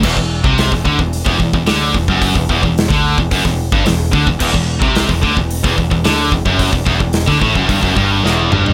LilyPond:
<<
  \new Staff \with { instrumentName = "Distorted electric guitar" } { \clef bass \time 4/4 \key e \minor \tempo 4 = 110 e,16 e,8 c8 e,16 d16 e,8 e,16 e,16 e,16 d8 e,16 fis,16~ | fis,16 e,16 e,16 e,8 d8 e,16 fis,16 e,8 g,16 e,8 d16 e,16 | e,16 e,8 c8 e,16 d16 e,8 e,16 e,16 e,16 d8 e,16 fis,16~ | fis,16 e,16 e,16 e,8 d16 a,16 fis,16 g,16 fis,16 g,8 e,8 g,8 | }
  \new Staff \with { instrumentName = "Distorted electric guitar" } { \clef bass \time 4/4 \key e \minor e,16 e,8 c8 e,16 d16 e,8 e,16 e,16 e,16 d8 e,16 fis,16~ | fis,16 e,16 e,16 e,8 d8 e,16 fis,16 e,8 g,16 e,8 d16 e,16 | e,16 e,8 c8 e,16 d16 e,8 e,16 e,16 e,16 d8 e,16 fis,16~ | fis,16 e,16 e,16 e,8 d16 a,16 fis,16 g,16 fis,16 g,8 e,8 g,8 | }
  \new Staff \with { instrumentName = "Picked electric bass" } { \clef bass \time 4/4 \key e \minor e,,16 e,,8 c,8 e,,16 d,16 e,,8 e,,16 e,,16 e,,16 d,8 e,,16 fis,,16~ | fis,,16 e,,16 e,,16 e,,8 d,8 e,,16 fis,,16 e,,8 g,,16 e,,8 d,16 e,,16 | e,,16 e,,8 c,8 e,,16 d,16 e,,8 e,,16 e,,16 e,,16 d,8 e,,16 fis,,16~ | fis,,16 e,,16 e,,16 e,,8 d,16 a,,16 fis,,16 g,,16 fis,,16 g,,8 e,,8 g,,8 | }
  \new DrumStaff \with { instrumentName = "Drums" } \drummode { \time 4/4 <cymc bd>16 bd8 bd16 <hho sn>16 <bd sn>16 bd16 bd16 hho16 bd16 bd16 bd16 <hho sn>8 bd16 bd16 | <hho bd>16 bd16 bd16 bd16 <hho sn>16 bd8 bd16 <hho bd>16 <bd sn>8 bd16 <hho sn>8 bd16 bd16 | <cymc bd>16 bd8 bd16 <hho sn>16 bd16 bd16 bd16 hho16 <bd sn>16 bd16 bd16 <hho sn>8 bd16 bd16 | <hho bd>16 bd16 bd16 bd16 <hho sn>16 <bd sn>16 bd16 bd16 <hho bd>16 bd16 bd8 sn8 toml16 tomfh16 | }
>>